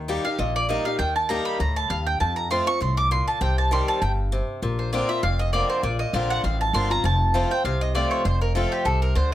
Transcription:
Already playing: D#2 D#3
0.08 G3 A#3 D#4 G4
0.24 D#4 G4 F5
0.38 A#1 A#2 D#5
0.56 D5
0.69 G3 A#3 D#4 G4 D#5
0.85 D#4 G4 F5
0.99 D#2 D#3 G5
1.16 A5
1.29 G3 A#3 D#4 G4 A#5
1.45 B5
1.59 D2 A2 A#5
1.76 A5
1.90 D#2 G2 F5
2.07 G5
2.20 F2 A5
2.36 A#5
2.51 F3 A3 C4 F4 C6
2.67 C4 F4 C#6
2.81 C2 A2 C6
2.97 D6
3.11 A#2 C6
3.28 A5
3.41 C2 C3 G5
3.58 A5
3.71 D#3 G3 C4 G4 C6
3.88 A5
4.01 G1 G2 G5
4.32 C3
4.62 A#1 A#2
4.79 C5
4.93 D3 A#3 C4 F4 D5
5.09 C4 F4 E5
5.23 F1 F2 F5
5.39 D#5
5.53 D3 A#3 C4 F4 D5
5.70 C5
5.83 A#1 A#2 D5
5.99 D#5
6.13 A#1 D3 A#3 C4 F4 F5
6.30 F#5
6.43 A1 F2 F5
6.61 A5
6.73 G1 D3 A#3 C4 F4 C6
6.90 C4 F4 A#5
7.04 F1 F2 A5
7.34 F3 A3 C4 F4
7.51 C4 F4 G5
7.64 C2 C3 F5
7.81 D#5
7.95 F3 A3 C4 F4 D5
8.11 C#5
8.25 F1 F2 C5
8.41 A#4
8.55 F3 A3 C4 F4 A4
8.72 G4
8.85 C2 C3 A4
9.02 A#4
9.15 D2 D3 C5

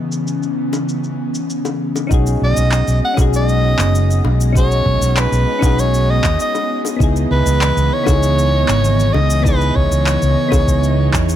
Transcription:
Already playing: C#3 E3 B3 C#4 D#4 E4 G#4
0.12 shaker
0.27 shaker
0.43 shaker
0.73 high bongo, shaker
0.89 shaker
1.04 shaker
1.35 shaker
1.50 shaker
1.65 high bongo, shaker
1.96 high bongo, shaker
2.07 B1 C#4 D#4, kick
2.11 G#3 B3 F#4 G#4 D#5, shaker
2.27 shaker
2.42 B1 D#5
2.57 B1, shaker
2.72 clap, shaker
2.88 B1, shaker
3.05 F#5
3.14 B1 C#4 D#4, kick, high bongo
3.18 F#4 G#4, shaker
3.34 D#5, shaker
3.49 shaker
3.79 F#1, clap, shaker
3.95 shaker
4.11 shaker
4.24 B1, high bongo
4.41 shaker
4.53 C#4 D#4, kick, shaker
4.57 F#4 G#4 C#5
4.71 shaker
4.86 B1, kick
5.01 B1, shaker
5.17 B4, clap, shaker
5.32 B1, shaker
5.59 B1 C#4 D#4, kick, high bongo
5.63 F#4 G#4, shaker
5.79 C#5, shaker
5.94 shaker
6.11 D#5
6.24 D#2, kick, clap, shaker
6.40 D#5, shaker
6.55 high bongo, shaker
6.85 high bongo, shaker
6.97 C#2 B3 D#4, kick
7.01 C#3 E3 E4 G#4, shaker
7.16 shaker
7.31 C#2 B4
7.46 C#2, shaker
7.61 clap, shaker
7.77 C#2, shaker
7.94 C#5
8.04 C#2 B3 D#4, kick, high bongo
8.08 E4 G#4, shaker
8.23 shaker
8.39 shaker
8.68 G#1, clap, shaker
8.84 shaker
9.00 shaker
9.13 C#2 D#5, high bongo
9.30 shaker
9.42 B3 D#4 B4, kick
9.46 E4 G#4, shaker
9.61 shaker
9.76 C#2 C#5, kick
9.91 C#2, shaker
10.06 clap, shaker
10.22 C#2, shaker
10.49 C#2 B3 D#4, kick, high bongo
10.53 E4 G#4, shaker
10.67 kick, shaker
10.84 shaker
11.13 E2, kick, clap, shaker
11.29 shaker

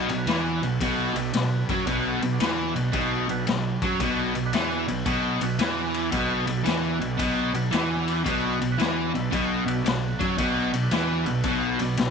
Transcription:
Already playing: D4 F#4 B4
0.09 B1 B2, ride
0.17 D4 F#4 B4
0.26 E2 E3, snare, ride
0.61 B1 B2, ride
0.80 B1 B2, kick, ride
1.13 B1 D4 F#4 B4, ride
1.17 B2
1.33 B1 B2, snare, ride
1.69 F#2 F#3, kick, ride
1.85 B1 B2 D4 F#4 B4, kick, ride
2.21 B1 B2, ride
2.32 D4 F#4 B4
2.40 E2 E3, snare, ride
2.76 B1 B2, ride
2.93 B1 B2, kick, ride
3.28 B1 B2 D4 F#4 B4, ride
3.47 B1 B2, snare, ride
3.82 F#2 F#3, kick, ride
3.99 B1 B2 D4 F#4 C#5, kick, ride
4.35 B1 B2, ride
4.46 D4 F#4 B4
4.53 E2 E3, snare, ride
4.88 B1 B2, ride
5.06 B1 B2, kick, ride
5.41 B1 B2 D4 F#4 B4, ride
5.59 E2 E3, snare, ride
5.94 ride
6.11 B1 B2 D4 F#4 B4, kick, ride
6.47 B1 B2, ride
6.57 D4 F#4 B4
6.64 E2 E3, snare, ride
7.00 B1 B2, ride
7.18 B1 B2, kick, ride
7.54 B1 B2 D4 F#4 B4, ride
7.71 E2 E3, snare, ride
8.08 ride
8.24 B1 B2 D4 F#4 B4, kick, ride
8.60 B1 B2, ride
8.72 D4 F#4 B4
8.78 E2 E3, snare, ride
9.14 B1 B2, ride
9.31 B1 B2, kick, ride
9.66 B1 B2 D4 F#4 B4, ride
9.85 B1 B2, snare, ride
10.19 F#2 F#3, kick, ride
10.38 B1 B2 D4 F#4 B4, kick, ride
10.73 B1 B2, ride
10.83 D4 F#4 B4
10.91 E2 E3, snare, ride
11.26 B1 B2, ride
11.44 B1 B2, kick, ride
11.78 B1 B2 D4 F#4 B4, ride
11.97 B1 B2, snare, ride

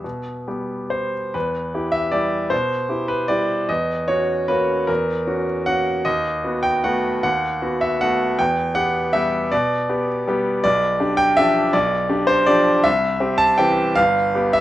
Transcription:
Already playing: E5 E6
0.04 B2
0.48 G3 B3 G4
0.90 C5
1.34 E2 B4
1.74 E4 G4
1.92 E5
2.11 G3 E4 G4 D5
2.50 B2 C5
2.89 E4 G4
3.08 B4
3.28 G3 E4 G4 D5
3.69 E2 D#5
4.08 C#4 F#4 C#5
4.48 A#3 C#4 F#4 B4
4.87 E2 A#4
5.27 C#4 F#4
5.66 A#3 C#4 F#4 F#5
6.05 D#2 D#5
6.44 B3 F#4
6.63 G5
6.84 A3 B3 F#4 F#5
7.23 D#2 F#5
7.62 B3 F#4
7.81 E5
8.01 A3 B3 F#4 F#5
8.38 E2 G5
8.75 B3 G4 F#5
9.13 G3 B3 G4 E5
9.51 B2 D5
9.89 B3 G4
10.27 G3 B3 G4
10.63 B1 D5
11.00 D4 G4
11.17 G5
11.37 F3 D4 G4 E5
11.73 B1 D5
12.09 D4 G4
12.27 C5
12.46 F3 D4 G4 D5
12.84 C2 E5
13.20 C4 G4
13.38 A5
13.58 E3 C4 G4 G5
13.95 G1 F5
14.35 B3 G4
14.53 E5

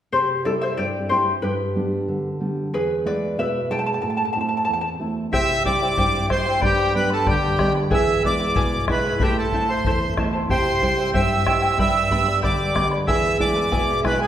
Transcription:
0.12 C3 G4 C5
0.45 G3 C4 E4 A4 D5
0.61 C5 E5
0.78 G2 G4 D5
1.09 G3 C4 E4 G4 C5
1.42 G2 G4 B4
1.75 G3 B3 D4
2.08 D3
2.40 G3 B3 D4
2.74 E2 G#4 B4
3.05 G#3 B3 E4 B4 D5
3.38 B2 B4 E5
3.70 G#3 B3 E4 G5 A5
3.79 A5
3.86 A5
3.94 A5
4.02 A2 A5
4.10 A5
4.17 A5
4.25 A5
4.33 A3 C4 A5
4.37 E4 A5
4.49 A5
4.57 A5
4.65 E2 A5
4.73 A5
4.81 A5
4.99 A3 C4 E4
5.32 C3 E4 G4 C5 E5 G5, bombo low
5.65 G3 C4 E4 C5 D5 E5 G5, bombo low
5.81 E4 C5 G5
5.97 G2 E4 G4 C5 E5 G5, bombo low
6.29 G3 C4 E4 C5 E5 G5, bombo rim, bombo low
6.45 E4 C5 G5
6.61 G2 G4 B4 D5 G5 B5, bombo low
6.93 G3 B3 D4 B4 D5 G5 B5
7.10 A4 B4 D5 B5
7.26 D3 G4 B4 D5 G5 B5, bombo low
7.59 G3 B3 D4 B4 D5 G5 B5, bombo rim, bombo low
7.75 B4 D5 B5
7.91 E2 E4 G#4 B4 E5 G#5, bombo low
8.23 G#3 B3 E4 B4 D5 E5 G#5, bombo low
8.40 E4 B4 G#5
8.56 B2 E4 G#4 B4 E5 G#5, bombo low
8.88 G#3 B3 E4 B4 E5 G#5, bombo rim, bombo low
9.05 E4 B4 G#5
9.20 A2 E4 G4 A4 C5 E5 A5, bombo low
9.38 A4
9.52 A3 C4 E4 C5 E5 A5, bombo low
9.69 E4 C5 A5
9.85 E2 E4 A4 C5 E5 A5, bombo low
10.17 A3 C4 E4 C5 E5 A5, bombo rim, bombo low
10.33 E4 C5 A5
10.49 C3 E4 G4 C5 E5 G5, bombo low
10.82 G3 C4 E4 C5 E5 G5, bombo low
10.98 E4 C5 G5
11.13 G2 E4 G4 C5 E5 G5, bombo low
11.46 G3 C4 E4 C5 E5 G5, bombo rim, bombo low
11.62 E4 C5 G5
11.79 G2 G4 B4 D5 E5 G5 B5, bombo low
12.10 G3 B3 D4 B4 D5 G5 B5, bombo low
12.26 B4 D5 B5
12.42 D3 G4 B4 D5 G5 B5, bombo low
12.74 G3 B3 D4 B4 D5 G5 B5, bombo rim, bombo low
12.91 B4 D5 B5
13.07 E2 E4 G#4 B4 E5 G#5, bombo low
13.39 G#3 B3 E4 B4 D5 E5 G#5, bombo low
13.55 E4 B4 G#5
13.71 B2 E4 G#4 B4 E5 G#5, bombo low
14.03 G#3 B3 E4 B4 E5 G#5, bombo rim, bombo low
14.19 E4 G#4 B4 G#5

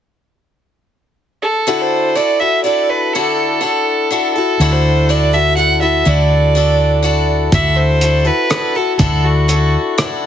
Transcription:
1.43 A4
1.67 D3 D4 E4 F#4 A4
1.81 C5
2.15 D4 E4 F#4 A4 D5
2.39 E4 F#4 A4 E5
2.64 D4 E4 F#4 A4 D5
2.90 B4
3.13 D3 D4 E4 F#4 A4
3.61 D4 E4 F#4 A4
4.11 D4 E4 F#4 A4
4.34 E4 A4
4.38 F#4
4.60 D2 D3 D4 E4 F#4 A4
4.72 C5
5.09 D4 E4 F#4 A4 D5
5.33 E4 F#4 A4 E5
5.57 D4 E4 F#4 A4 F#5
5.81 E4 F#4 A4 E5
6.05 D2 D3 D4 E4 F#4 A4 D5
6.55 D4 E4 F#4 A4
7.03 D4 E4 F#4 A4
7.52 D2 D3 D4 E4 F#4 A4 E5, kick, closed hi-hat
7.77 C5
8.01 D4 E4 F#4 A4, closed hi-hat
8.25 E4 F#4 A4 B4
8.50 D4 E4 F#4 A4, cross-stick, closed hi-hat
8.75 E4 F#4 A4
8.98 D2 D3 D4 E4 F#4 A4, kick, closed hi-hat
9.25 F#4
9.48 D4 E4 F#4 A4, closed hi-hat
9.98 D4 E4 F#4 A4, cross-stick, closed hi-hat

